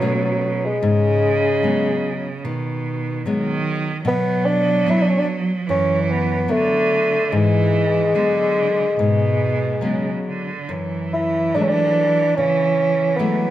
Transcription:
Already playing: B2
0.01 F#3 A3 C#4
0.07 F#3
0.14 F#3
0.25 F#3
0.32 F#3
0.39 F#3
0.45 F#3
0.65 G#3
0.82 G#2 C#3
1.63 F#3 G#3 B3
2.44 B2 D#3
3.25 D#3 F#3 G#3 B3
4.05 B2 F#3 B3
4.45 D4
4.86 F#3 B3 D4
4.91 E4
5.03 D4
5.09 C#4
5.18 D4
5.66 F#2 E3 C#4
6.02 C#4
6.11 B3
6.48 D3 F#3 A3 B3 D4
7.25 A3
7.32 G#2 E3 G#3
8.15 D3 F#3 G#3 B3
8.97 G#2 B2
9.81 C#3 F#3 G#3 B3
10.28 D3
10.69 F#2 E3
11.13 E4
11.55 F#3 G#3 A3 D4
11.62 C#4
11.68 D4
12.36 C#3 C#4
13.16 F#3 G#3 A3 B3

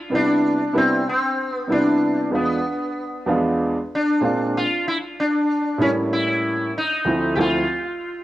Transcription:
0.10 C3 G3 B3 D4 E4
0.15 D4
0.73 C3 G3 B3 D4 E4
0.77 C4
1.09 C4
1.54 B3
1.67 C3 G3 B3 D4 E4
1.72 D4
2.30 E2 G#3 B3 D4 F4
2.35 B3
3.26 E2 F3 B3 D4 F4
3.33 G#3
3.95 D4
4.21 A#2 G#3 C4 D4 F4
4.57 F4
4.88 E4
5.20 D4
5.78 A2 G3 A#3 C#4 E4
6.13 E4
6.78 D#4
7.05 D2 F3 A3 C4 E4
7.35 D2 F3 A3 C4 E4 G4
7.40 F4

